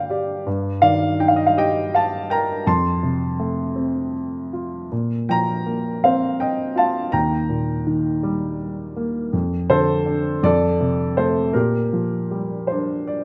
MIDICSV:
0, 0, Header, 1, 2, 480
1, 0, Start_track
1, 0, Key_signature, -2, "major"
1, 0, Tempo, 732601
1, 303, Time_signature, 6, 3, 24, 8
1, 2228, Tempo, 752823
1, 4148, Tempo, 733496
1, 7508, Tempo, 766284
1, 8570, End_track
2, 0, Start_track
2, 0, Title_t, "Grand piano"
2, 0, Program_c, 0, 0
2, 0, Control_c, 0, 64, 127
2, 0, Note_on_c, 0, 43, 49
2, 0, Note_on_c, 0, 50, 42
2, 0, Note_on_c, 0, 58, 42
2, 0, Note_on_c, 0, 62, 44
2, 0, Note_on_c, 0, 74, 56
2, 0, Note_on_c, 0, 77, 56
2, 0, Note_on_c, 0, 79, 54
2, 0, Note_on_c, 0, 81, 70
2, 65, Note_off_c, 0, 74, 0
2, 65, Note_on_c, 0, 74, 55
2, 66, Note_on_c, 0, 67, 49
2, 281, Note_off_c, 0, 58, 0
2, 283, Note_off_c, 0, 43, 0
2, 286, Note_off_c, 0, 74, 0
2, 287, Note_off_c, 0, 62, 0
2, 296, Note_off_c, 0, 67, 0
2, 304, Note_on_c, 0, 43, 53
2, 313, Control_c, 0, 64, 0
2, 316, Note_off_c, 0, 77, 0
2, 318, Note_off_c, 0, 81, 0
2, 319, Note_off_c, 0, 50, 0
2, 320, Note_off_c, 0, 79, 0
2, 439, Control_c, 0, 64, 127
2, 536, Note_on_c, 0, 77, 84
2, 539, Note_on_c, 0, 51, 48
2, 544, Note_on_c, 0, 74, 56
2, 772, Note_off_c, 0, 74, 0
2, 786, Note_on_c, 0, 63, 48
2, 787, Note_on_c, 0, 79, 61
2, 792, Note_off_c, 0, 77, 0
2, 840, Note_on_c, 0, 77, 61
2, 845, Note_off_c, 0, 79, 0
2, 893, Note_on_c, 0, 75, 56
2, 901, Note_off_c, 0, 77, 0
2, 956, Note_off_c, 0, 75, 0
2, 960, Note_on_c, 0, 77, 60
2, 1019, Note_off_c, 0, 77, 0
2, 1029, Note_on_c, 0, 67, 52
2, 1033, Note_on_c, 0, 75, 60
2, 1038, Note_on_c, 0, 79, 74
2, 1252, Note_off_c, 0, 75, 0
2, 1275, Note_on_c, 0, 77, 60
2, 1278, Note_off_c, 0, 79, 0
2, 1283, Note_on_c, 0, 81, 74
2, 1475, Note_off_c, 0, 51, 0
2, 1492, Note_off_c, 0, 77, 0
2, 1497, Note_off_c, 0, 81, 0
2, 1508, Note_on_c, 0, 79, 58
2, 1510, Note_on_c, 0, 70, 51
2, 1515, Note_on_c, 0, 82, 77
2, 1716, Note_off_c, 0, 43, 0
2, 1720, Note_off_c, 0, 63, 0
2, 1725, Note_off_c, 0, 67, 0
2, 1728, Note_off_c, 0, 79, 0
2, 1732, Note_off_c, 0, 82, 0
2, 1739, Note_off_c, 0, 70, 0
2, 1745, Note_on_c, 0, 41, 57
2, 1747, Note_on_c, 0, 81, 61
2, 1750, Control_c, 0, 64, 0
2, 1752, Note_on_c, 0, 84, 77
2, 1856, Control_c, 0, 64, 127
2, 1986, Note_on_c, 0, 48, 43
2, 2225, Note_on_c, 0, 57, 44
2, 2455, Note_on_c, 0, 60, 41
2, 2686, Note_off_c, 0, 81, 0
2, 2688, Note_off_c, 0, 84, 0
2, 2928, Note_off_c, 0, 48, 0
2, 2948, Note_on_c, 0, 65, 38
2, 3167, Note_off_c, 0, 60, 0
2, 3168, Note_off_c, 0, 57, 0
2, 3170, Note_off_c, 0, 41, 0
2, 3185, Note_off_c, 0, 65, 0
2, 3195, Note_on_c, 0, 46, 45
2, 3201, Control_c, 0, 64, 0
2, 3301, Control_c, 0, 64, 127
2, 3433, Note_on_c, 0, 79, 60
2, 3435, Note_on_c, 0, 53, 41
2, 3445, Note_on_c, 0, 82, 78
2, 3669, Note_on_c, 0, 58, 41
2, 3885, Note_off_c, 0, 79, 0
2, 3908, Note_on_c, 0, 60, 44
2, 3910, Note_on_c, 0, 77, 63
2, 3916, Note_on_c, 0, 72, 52
2, 3931, Note_off_c, 0, 82, 0
2, 4133, Note_off_c, 0, 72, 0
2, 4141, Note_on_c, 0, 79, 65
2, 4150, Note_on_c, 0, 75, 51
2, 4153, Note_off_c, 0, 77, 0
2, 4361, Note_off_c, 0, 53, 0
2, 4372, Note_off_c, 0, 75, 0
2, 4372, Note_on_c, 0, 65, 46
2, 4386, Note_on_c, 0, 81, 71
2, 4392, Note_off_c, 0, 79, 0
2, 4395, Note_on_c, 0, 77, 52
2, 4598, Note_off_c, 0, 58, 0
2, 4601, Note_off_c, 0, 46, 0
2, 4603, Note_off_c, 0, 60, 0
2, 4609, Note_off_c, 0, 81, 0
2, 4612, Note_off_c, 0, 65, 0
2, 4612, Note_on_c, 0, 82, 68
2, 4614, Note_off_c, 0, 77, 0
2, 4617, Note_on_c, 0, 39, 51
2, 4619, Note_on_c, 0, 79, 52
2, 4636, Control_c, 0, 64, 0
2, 4736, Control_c, 0, 64, 127
2, 4855, Note_on_c, 0, 46, 41
2, 5100, Note_on_c, 0, 51, 44
2, 5339, Note_on_c, 0, 55, 46
2, 5546, Note_off_c, 0, 82, 0
2, 5549, Note_off_c, 0, 79, 0
2, 5788, Note_off_c, 0, 46, 0
2, 5818, Note_on_c, 0, 58, 48
2, 6030, Note_off_c, 0, 39, 0
2, 6033, Note_off_c, 0, 51, 0
2, 6038, Note_off_c, 0, 55, 0
2, 6053, Note_off_c, 0, 58, 0
2, 6056, Note_on_c, 0, 41, 52
2, 6069, Control_c, 0, 64, 0
2, 6177, Control_c, 0, 64, 127
2, 6297, Note_on_c, 0, 50, 45
2, 6298, Note_on_c, 0, 72, 84
2, 6303, Note_on_c, 0, 69, 62
2, 6536, Note_on_c, 0, 62, 46
2, 6755, Note_off_c, 0, 72, 0
2, 6758, Note_off_c, 0, 69, 0
2, 6760, Note_off_c, 0, 41, 0
2, 6766, Note_off_c, 0, 50, 0
2, 6773, Note_off_c, 0, 62, 0
2, 6776, Note_on_c, 0, 41, 58
2, 6782, Note_on_c, 0, 74, 85
2, 6791, Control_c, 0, 64, 0
2, 6794, Note_on_c, 0, 69, 67
2, 6907, Control_c, 0, 64, 127
2, 7022, Note_on_c, 0, 48, 45
2, 7245, Note_off_c, 0, 69, 0
2, 7263, Note_on_c, 0, 72, 72
2, 7264, Note_on_c, 0, 57, 46
2, 7272, Note_on_c, 0, 69, 57
2, 7279, Note_off_c, 0, 74, 0
2, 7482, Note_off_c, 0, 41, 0
2, 7492, Note_off_c, 0, 48, 0
2, 7494, Note_off_c, 0, 69, 0
2, 7499, Note_off_c, 0, 57, 0
2, 7499, Note_on_c, 0, 70, 60
2, 7500, Note_on_c, 0, 46, 50
2, 7511, Note_on_c, 0, 67, 47
2, 7513, Note_off_c, 0, 72, 0
2, 7515, Control_c, 0, 64, 0
2, 7616, Control_c, 0, 64, 127
2, 7747, Note_on_c, 0, 53, 44
2, 7987, Note_on_c, 0, 55, 38
2, 8214, Note_on_c, 0, 72, 59
2, 8241, Note_on_c, 0, 62, 45
2, 8465, Note_on_c, 0, 74, 58
2, 8470, Note_off_c, 0, 72, 0
2, 8570, Note_off_c, 0, 46, 0
2, 8570, Note_off_c, 0, 53, 0
2, 8570, Note_off_c, 0, 55, 0
2, 8570, Note_off_c, 0, 62, 0
2, 8570, Note_off_c, 0, 67, 0
2, 8570, Note_off_c, 0, 70, 0
2, 8570, Note_off_c, 0, 74, 0
2, 8570, End_track
0, 0, End_of_file